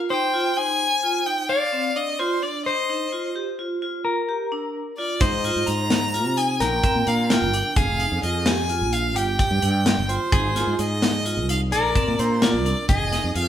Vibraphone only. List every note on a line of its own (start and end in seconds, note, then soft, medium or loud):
0.10 0.24 D#4 medium
0.33 0.47 F4 medium
0.57 0.85 D#4 medium
1.03 1.17 F4 medium
1.26 1.54 D#4 medium
1.72 1.86 C4 medium
1.96 2.10 D4 medium
2.19 2.33 F4 medium
2.43 2.70 D4 medium
2.90 3.03 D#4 medium
3.12 3.26 F4 medium
3.36 3.49 G4 medium
3.59 3.73 F4 medium
3.82 4.10 F4 medium
4.29 4.42 G4 medium
4.52 4.79 D4 medium
4.98 5.12 F4 medium
5.22 5.35 D#4 medium
5.45 5.58 F4 medium
5.68 5.95 D#4 medium
6.14 6.28 F4 medium
6.38 6.65 D#4 medium
6.84 6.98 C4 medium
7.07 7.21 D4 medium
7.30 7.44 F4 medium
7.54 7.81 D4 medium
8.00 8.14 D#4 medium
8.23 8.37 F4 medium
8.46 8.60 G4 medium
8.70 8.84 F4 medium
8.93 9.21 F4 medium
9.40 9.54 G4 medium
9.63 9.90 D4 medium
10.10 10.23 F4 medium
10.32 10.46 D#4 medium
10.56 10.70 F4 medium
10.79 11.07 D#4 medium
11.26 11.39 F4 medium
11.49 11.77 D#4 medium
11.96 12.10 C4 medium
12.19 12.33 D4 medium
12.42 12.56 F4 medium
12.66 12.93 D4 medium
13.13 13.26 D#4 medium
13.36 13.48 F4 medium